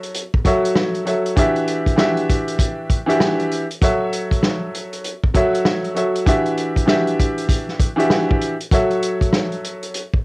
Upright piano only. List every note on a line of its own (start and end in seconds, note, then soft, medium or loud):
0.00 0.20 F#3 medium
0.00 0.20 F#4 medium
0.00 0.20 A4 medium
0.00 0.21 C#5 medium
0.00 0.21 E5 loud
0.45 1.02 F#3 medium
0.45 1.03 F#4 medium
0.45 1.03 A4 medium
0.45 1.03 C#5 medium
0.45 1.04 E5 medium
1.05 1.34 F#3 medium
1.05 1.35 F#4 medium
1.05 1.35 A4 medium
1.05 1.35 C#5 medium
1.05 1.36 E5 medium
1.36 1.94 E3 loud
1.36 1.94 D4 medium
1.36 1.95 F#4 medium
1.36 1.95 G4 medium
1.36 1.95 E5 loud
1.96 2.97 E3 medium
1.96 2.98 D4 medium
1.96 2.98 F#4 medium
1.96 2.98 G4 medium
1.96 2.99 E5 loud
3.06 3.63 E3 loud
3.06 3.63 D4 medium
3.06 3.63 F#4 medium
3.06 3.64 G4 medium
3.06 3.64 E5 loud
3.81 5.09 F#3 medium
3.81 5.10 F#4 medium
3.81 5.10 A4 medium
3.81 5.10 C#5 medium
3.81 5.11 E5 loud
5.34 5.92 F#3 medium
5.34 5.92 F#4 medium
5.34 5.93 A4 medium
5.34 5.93 C#5 medium
5.34 5.93 E5 loud
5.95 6.24 F#3 medium
5.95 6.24 F#4 medium
5.95 6.25 A4 medium
5.95 6.25 C#5 medium
5.95 6.26 E5 medium
6.26 6.84 E3 medium
6.26 6.84 D4 medium
6.26 6.84 F#4 medium
6.26 6.85 G4 medium
6.26 6.85 E5 loud
6.86 7.87 E3 medium
6.86 7.87 D4 medium
6.86 7.88 F#4 medium
6.86 7.88 G4 medium
6.86 7.88 E5 loud
7.96 8.53 E3 loud
7.96 8.53 D4 medium
7.96 8.53 F#4 medium
7.96 8.54 G4 medium
7.96 8.54 E5 loud
8.71 9.99 F#3 medium
8.71 10.00 F#4 medium
8.71 10.00 A4 medium
8.71 10.00 C#5 medium
8.71 10.01 E5 loud